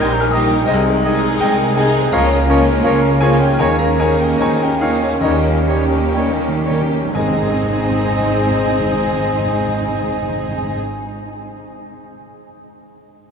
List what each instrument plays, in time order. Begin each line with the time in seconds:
Already playing: grand piano A#1 A#3 D#4 A#4 C#5 D#5 A#5 C#6 D#6 F6 G6, cello section A#2, bassoon D#3, viola section G3, french horn section G3 D#4, violin section D#4 A#4, oboe D#5
0.00 double bass section A#1, clarinet G4, grand piano G5 G#6, flute section C6
0.11 flute section A#5, grand piano G6
0.20 grand piano A#4 F6, flute section G#5
0.31 bassoon D#3, viola section G3, violin section D#4 A#4, clarinet G4, grand piano D#5 D#6, oboe D#5, flute section G5
0.38 grand piano G4
0.56 grand piano D#4
0.66 double bass section C2, cello section C3, bassoon D#3, grand piano D#4 C5 D#5, clarinet G#4, flute section G#4, oboe D#5
0.70 grand piano C2, french horn section G#3
0.90 grand piano G#3
1.04 bassoon D#3, viola section G#3, violin section D#4 G#4, grand piano D#4, clarinet G#4, oboe D#5
1.28 grand piano G#4
1.40 double bass section C2, cello section C3, bassoon D#3, grand piano G4 D#5 G5, clarinet G#4, flute section A#4, oboe D#5
1.45 grand piano G#5
1.61 grand piano G#4
1.76 bassoon D#3, viola section G#3, violin section D#4 G#4, clarinet G#4, grand piano G#4 G#5, flute section C5, oboe D#5
1.82 grand piano D#4
1.98 grand piano G#3
2.12 double bass section C#2, grand piano C#2 A#4 F5 A#5, cello section C#3, bassoon F3, french horn section A#3 C#4, viola section A#3, violin section C#4 F4, clarinet A#4, oboe C#5, flute section C#5
2.33 grand piano A#3
2.49 bassoon F3, viola section A#3, violin section C#4 F4, grand piano C#4, clarinet A#4, oboe C#5
2.67 grand piano A#4
2.84 double bass section C#2, cello section C#3, bassoon F3, clarinet A#4, oboe C#5, grand piano F5
3.01 grand piano A#4
3.21 bassoon F3, viola section A#3, violin section C#4 F4, grand piano F4 G#4 G#5, clarinet A#4, flute section C5, oboe C#5
3.40 grand piano C#4 G4 G5, flute section A#4
3.58 grand piano D#2 G#4 G#5, double bass section D#2, cello section D#3, bassoon D#3, timpani D#3, clarinet A#4, oboe C#5, flute section C#5
3.79 grand piano A#3 A#4 A#5, flute section C#5
3.99 bassoon D#3, viola section A#3, violin section C#4 D#4, grand piano C#4 G#4 G#5, clarinet A#4, flute section C5, oboe C#5
4.19 grand piano G4 A#4 G5, flute section A#4
4.37 double bass section D#2, bassoon D#3, cello section D#3, clarinet A#4, flute section C5, oboe C#5, grand piano D#5 G#5
4.42 grand piano G#4
4.59 grand piano G4 A#4 G5, flute section A#4
4.80 bassoon D#3, viola section A#3, violin section C#4 D#4, grand piano D#4 F4 F5, flute section G#4, clarinet A#4, oboe C#5
5.00 grand piano C#4 C#5, flute section F4
5.04 grand piano C#4
5.21 grand piano D#2 D#4 A#4 D#5, cello section D#3, timpani D#3, french horn section G3, bassoon G3, viola section A#3, violin section C#4 G4, flute section G4, clarinet A#4, oboe C#5
5.25 double bass section D#2
5.34 timpani D#3
5.43 grand piano A#3
5.54 timpani D#3
5.63 timpani D#3, bassoon G3, grand piano C#4
5.68 viola section A#3, violin section C#4 G4, clarinet A#4, oboe C#5
5.74 timpani D#3
5.86 timpani D#3
5.90 grand piano A#4
5.95 timpani D#3
6.14 double bass section D#2, cello section D#3, timpani D#3, bassoon G3, grand piano G4 D#5 G5, flute section A#4, clarinet A#4, oboe C#5
6.28 timpani D#3
6.38 timpani D#3, grand piano A#4
6.49 timpani D#3
6.64 bassoon G3, viola section A#3, violin section C#4 G4, grand piano G4, clarinet A#4, oboe C#5
6.70 timpani D#3
6.82 timpani D#3
6.90 timpani D#3, grand piano C#4
7.03 timpani D#3
7.12 double bass section G#1, grand piano G#2 G#4 D#5 G#5, cello section G#2, timpani G#2, bassoon G#3, french horn section G#3 C4, viola section C4, violin section D#4 G#4, clarinet C5, oboe D#5, flute section G#5
7.19 timpani G#2, grand piano G#3
7.27 timpani G#2, grand piano C4
7.34 timpani G#2, grand piano D#4
7.40 timpani G#2, grand piano G#4
7.48 timpani G#2, grand piano D#5
7.56 timpani G#2
7.63 timpani G#2
7.70 timpani G#2
7.77 timpani G#2
7.84 timpani G#2
7.91 timpani G#2
7.98 timpani G#2
8.05 timpani G#2
8.11 timpani G#2
8.18 timpani G#2
8.25 timpani G#2
8.31 timpani G#2
8.37 timpani G#2
8.44 timpani G#2
8.51 timpani G#2
8.58 timpani G#2
8.65 timpani G#2
8.72 timpani G#2
8.79 timpani G#2
8.85 timpani G#2
8.92 timpani G#2
8.99 timpani G#2
9.05 timpani G#2
9.12 timpani G#2
9.19 timpani G#2
9.25 timpani G#2
9.32 timpani G#2
9.39 timpani G#2
9.46 timpani G#2
9.53 timpani G#2
9.60 timpani G#2
9.67 timpani G#2
9.73 timpani G#2
9.80 timpani G#2
9.88 timpani G#2
9.95 timpani G#2
10.02 timpani G#2
10.09 timpani G#2
10.15 timpani G#2
10.22 timpani G#2
10.28 timpani G#2
10.35 timpani G#2
10.42 timpani G#2
10.48 timpani G#2
10.56 timpani G#2
10.62 timpani G#2
10.69 timpani G#2
10.75 timpani G#2